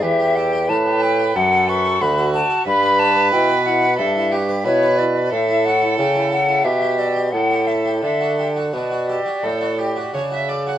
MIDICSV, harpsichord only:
0, 0, Header, 1, 2, 480
1, 0, Start_track
1, 0, Key_signature, 2, "major"
1, 0, Tempo, 661521
1, 24, Time_signature, 4, 2, 24, 8
1, 4824, Tempo, 696864
1, 7670, End_track
2, 0, Start_track
2, 0, Title_t, "Harpsichord"
2, 0, Program_c, 0, 6
2, 21, Note_on_c, 0, 40, 65
2, 144, Note_on_c, 0, 67, 55
2, 267, Note_on_c, 0, 69, 46
2, 270, Note_off_c, 0, 67, 0
2, 383, Note_on_c, 0, 67, 59
2, 387, Note_off_c, 0, 69, 0
2, 476, Note_off_c, 0, 40, 0
2, 507, Note_on_c, 0, 61, 56
2, 508, Note_on_c, 0, 45, 67
2, 511, Note_off_c, 0, 67, 0
2, 625, Note_on_c, 0, 67, 54
2, 633, Note_off_c, 0, 61, 0
2, 747, Note_on_c, 0, 69, 54
2, 753, Note_off_c, 0, 67, 0
2, 866, Note_on_c, 0, 67, 53
2, 873, Note_off_c, 0, 69, 0
2, 959, Note_off_c, 0, 45, 0
2, 987, Note_off_c, 0, 67, 0
2, 987, Note_on_c, 0, 42, 62
2, 1107, Note_on_c, 0, 69, 52
2, 1223, Note_on_c, 0, 71, 51
2, 1231, Note_off_c, 0, 69, 0
2, 1341, Note_on_c, 0, 69, 56
2, 1342, Note_off_c, 0, 71, 0
2, 1432, Note_off_c, 0, 42, 0
2, 1461, Note_on_c, 0, 38, 60
2, 1462, Note_on_c, 0, 66, 59
2, 1466, Note_off_c, 0, 69, 0
2, 1580, Note_on_c, 0, 69, 55
2, 1585, Note_off_c, 0, 66, 0
2, 1697, Note_on_c, 0, 74, 55
2, 1704, Note_off_c, 0, 69, 0
2, 1740, Note_off_c, 0, 38, 0
2, 1813, Note_on_c, 0, 69, 54
2, 1822, Note_off_c, 0, 74, 0
2, 1933, Note_on_c, 0, 43, 61
2, 1934, Note_off_c, 0, 69, 0
2, 2052, Note_on_c, 0, 71, 54
2, 2170, Note_on_c, 0, 73, 47
2, 2179, Note_off_c, 0, 71, 0
2, 2291, Note_on_c, 0, 71, 54
2, 2293, Note_off_c, 0, 73, 0
2, 2385, Note_off_c, 0, 43, 0
2, 2411, Note_on_c, 0, 64, 54
2, 2413, Note_on_c, 0, 47, 60
2, 2419, Note_off_c, 0, 71, 0
2, 2531, Note_on_c, 0, 71, 57
2, 2539, Note_off_c, 0, 64, 0
2, 2653, Note_on_c, 0, 64, 56
2, 2659, Note_off_c, 0, 71, 0
2, 2773, Note_on_c, 0, 71, 54
2, 2780, Note_off_c, 0, 64, 0
2, 2865, Note_off_c, 0, 47, 0
2, 2895, Note_on_c, 0, 43, 65
2, 2900, Note_off_c, 0, 71, 0
2, 3015, Note_on_c, 0, 64, 52
2, 3137, Note_on_c, 0, 66, 47
2, 3141, Note_off_c, 0, 64, 0
2, 3256, Note_on_c, 0, 71, 49
2, 3257, Note_off_c, 0, 66, 0
2, 3347, Note_off_c, 0, 43, 0
2, 3377, Note_on_c, 0, 47, 62
2, 3377, Note_on_c, 0, 64, 53
2, 3383, Note_off_c, 0, 71, 0
2, 3499, Note_on_c, 0, 71, 53
2, 3504, Note_off_c, 0, 64, 0
2, 3617, Note_on_c, 0, 64, 53
2, 3625, Note_off_c, 0, 71, 0
2, 3741, Note_on_c, 0, 71, 53
2, 3745, Note_off_c, 0, 64, 0
2, 3832, Note_off_c, 0, 47, 0
2, 3862, Note_off_c, 0, 71, 0
2, 3865, Note_on_c, 0, 45, 60
2, 3981, Note_on_c, 0, 64, 50
2, 4104, Note_on_c, 0, 66, 42
2, 4109, Note_off_c, 0, 64, 0
2, 4222, Note_on_c, 0, 64, 48
2, 4225, Note_off_c, 0, 66, 0
2, 4317, Note_off_c, 0, 45, 0
2, 4342, Note_on_c, 0, 61, 49
2, 4343, Note_on_c, 0, 49, 63
2, 4349, Note_off_c, 0, 64, 0
2, 4464, Note_on_c, 0, 64, 49
2, 4469, Note_off_c, 0, 61, 0
2, 4586, Note_on_c, 0, 69, 48
2, 4590, Note_off_c, 0, 64, 0
2, 4706, Note_on_c, 0, 64, 43
2, 4711, Note_off_c, 0, 69, 0
2, 4795, Note_off_c, 0, 49, 0
2, 4824, Note_on_c, 0, 47, 52
2, 4826, Note_off_c, 0, 64, 0
2, 4940, Note_on_c, 0, 67, 46
2, 5058, Note_on_c, 0, 69, 42
2, 5062, Note_off_c, 0, 67, 0
2, 5174, Note_off_c, 0, 69, 0
2, 5177, Note_on_c, 0, 67, 44
2, 5263, Note_off_c, 0, 47, 0
2, 5292, Note_on_c, 0, 45, 55
2, 5293, Note_off_c, 0, 67, 0
2, 5416, Note_on_c, 0, 67, 43
2, 5533, Note_on_c, 0, 69, 42
2, 5540, Note_off_c, 0, 67, 0
2, 5653, Note_on_c, 0, 67, 45
2, 5654, Note_off_c, 0, 69, 0
2, 5748, Note_off_c, 0, 45, 0
2, 5774, Note_on_c, 0, 50, 46
2, 5775, Note_off_c, 0, 67, 0
2, 5898, Note_on_c, 0, 66, 46
2, 6019, Note_on_c, 0, 67, 36
2, 6025, Note_off_c, 0, 66, 0
2, 6140, Note_off_c, 0, 67, 0
2, 6141, Note_on_c, 0, 66, 44
2, 6233, Note_off_c, 0, 50, 0
2, 6260, Note_on_c, 0, 47, 50
2, 6261, Note_on_c, 0, 62, 47
2, 6268, Note_off_c, 0, 66, 0
2, 6384, Note_on_c, 0, 66, 44
2, 6387, Note_off_c, 0, 62, 0
2, 6507, Note_on_c, 0, 69, 43
2, 6508, Note_off_c, 0, 66, 0
2, 6545, Note_off_c, 0, 47, 0
2, 6621, Note_on_c, 0, 66, 41
2, 6630, Note_off_c, 0, 69, 0
2, 6744, Note_on_c, 0, 45, 48
2, 6745, Note_on_c, 0, 57, 39
2, 6747, Note_off_c, 0, 66, 0
2, 6863, Note_on_c, 0, 66, 46
2, 6869, Note_off_c, 0, 57, 0
2, 6985, Note_on_c, 0, 67, 36
2, 6988, Note_off_c, 0, 66, 0
2, 7104, Note_off_c, 0, 67, 0
2, 7107, Note_on_c, 0, 66, 41
2, 7197, Note_off_c, 0, 45, 0
2, 7227, Note_on_c, 0, 62, 44
2, 7228, Note_on_c, 0, 49, 49
2, 7232, Note_off_c, 0, 66, 0
2, 7348, Note_on_c, 0, 66, 46
2, 7352, Note_off_c, 0, 62, 0
2, 7471, Note_on_c, 0, 69, 41
2, 7474, Note_off_c, 0, 66, 0
2, 7592, Note_on_c, 0, 66, 43
2, 7595, Note_off_c, 0, 69, 0
2, 7670, Note_off_c, 0, 49, 0
2, 7670, Note_off_c, 0, 66, 0
2, 7670, End_track
0, 0, End_of_file